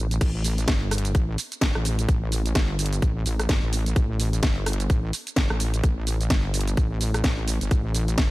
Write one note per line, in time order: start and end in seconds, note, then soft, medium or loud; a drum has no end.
0.00 0.19 A1 medium
0.11 closed hi-hat soft
0.11 shaker soft
0.21 0.66 A1 loud
0.21 kick loud
0.21 closed hi-hat medium
0.21 crash loud
0.21 shaker soft
0.44 open hi-hat loud
0.44 shaker medium
0.58 closed hi-hat medium
0.58 shaker soft
0.68 1.13 G1 medium
0.68 kick loud
0.68 snare loud
0.68 closed hi-hat medium
0.68 shaker soft
0.91 cross-stick medium
0.91 open hi-hat loud
0.91 shaker medium
0.98 closed hi-hat medium
1.05 closed hi-hat medium
1.05 shaker soft
1.15 1.37 A1 loud
1.15 kick loud
1.15 closed hi-hat medium
1.15 shaker soft
1.38 open hi-hat loud
1.38 shaker medium
1.52 closed hi-hat medium
1.52 shaker soft
1.61 1.73 G1 loud
1.61 kick loud
1.61 snare loud
1.61 closed hi-hat medium
1.61 shaker soft
1.75 2.07 A1 medium
1.75 cross-stick medium
1.85 open hi-hat loud
1.85 shaker medium
1.99 closed hi-hat medium
1.99 shaker soft
2.09 2.54 A1 loud
2.09 kick loud
2.09 closed hi-hat medium
2.09 shaker soft
2.32 open hi-hat loud
2.32 shaker medium
2.46 closed hi-hat medium
2.46 shaker soft
2.55 3.01 G1 medium
2.55 kick loud
2.55 snare loud
2.55 closed hi-hat medium
2.55 shaker soft
2.79 open hi-hat loud
2.79 shaker medium
2.86 closed hi-hat medium
2.93 closed hi-hat medium
2.93 shaker soft
3.02 3.24 A1 loud
3.02 kick loud
3.02 closed hi-hat medium
3.02 shaker soft
3.26 3.48 A1 loud
3.26 open hi-hat loud
3.26 shaker medium
3.39 cross-stick medium
3.39 closed hi-hat medium
3.39 shaker soft
3.49 3.61 G1 loud
3.49 kick loud
3.49 snare loud
3.49 closed hi-hat medium
3.49 shaker soft
3.63 3.94 A1 medium
3.73 open hi-hat loud
3.73 shaker medium
3.86 closed hi-hat medium
3.86 shaker soft
3.96 4.41 A1 loud
3.96 kick loud
3.96 closed hi-hat medium
3.96 shaker soft
4.20 open hi-hat loud
4.20 shaker medium
4.33 closed hi-hat medium
4.33 shaker soft
4.43 4.88 G1 medium
4.43 kick loud
4.43 snare loud
4.43 closed hi-hat medium
4.43 shaker soft
4.66 cross-stick medium
4.66 open hi-hat loud
4.66 shaker medium
4.73 closed hi-hat medium
4.80 closed hi-hat medium
4.80 shaker soft
4.90 5.12 A1 loud
4.90 kick loud
4.90 closed hi-hat medium
4.90 shaker soft
5.13 open hi-hat loud
5.13 shaker medium
5.27 closed hi-hat medium
5.27 shaker soft
5.36 5.48 G1 loud
5.36 kick loud
5.36 snare loud
5.36 closed hi-hat medium
5.36 shaker soft
5.50 5.82 A1 loud
5.50 cross-stick medium
5.60 open hi-hat loud
5.60 shaker medium
5.74 closed hi-hat medium
5.74 shaker soft
5.84 6.29 A1 loud
5.84 kick loud
5.84 closed hi-hat medium
5.84 shaker soft
6.07 open hi-hat loud
6.07 shaker medium
6.21 closed hi-hat soft
6.21 shaker soft
6.30 6.76 G1 loud
6.30 kick loud
6.30 snare loud
6.30 closed hi-hat medium
6.30 shaker soft
6.54 open hi-hat loud
6.54 shaker medium
6.61 closed hi-hat medium
6.68 closed hi-hat soft
6.68 shaker soft
6.77 7.23 A1 loud
6.77 kick loud
6.77 closed hi-hat medium
6.77 shaker soft
7.01 open hi-hat loud
7.01 shaker medium
7.14 cross-stick medium
7.14 closed hi-hat medium
7.14 shaker soft
7.24 7.59 A1 loud
7.24 kick loud
7.24 snare loud
7.24 closed hi-hat medium
7.24 shaker soft
7.48 open hi-hat loud
7.48 shaker medium
7.61 7.70 G1 loud
7.61 closed hi-hat medium
7.61 shaker soft
7.71 8.16 A1 loud
7.71 kick loud
7.71 closed hi-hat medium
7.71 shaker soft
7.95 open hi-hat loud
7.95 shaker medium
8.08 closed hi-hat medium
8.08 shaker soft
8.18 8.31 G1 loud
8.18 kick loud
8.18 snare loud
8.18 closed hi-hat medium
8.18 shaker soft